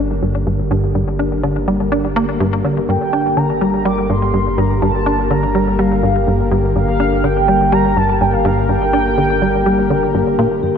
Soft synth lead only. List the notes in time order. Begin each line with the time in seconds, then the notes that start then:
2.89 G5
3.37 A#5
3.85 D6
4.02 D6
4.09 C6
4.57 A#5
4.82 A5
5.30 A#5
5.79 F5
6.76 F5
7.24 G5
7.73 A#5
7.97 A5
8.21 G5
8.33 F5
8.69 G5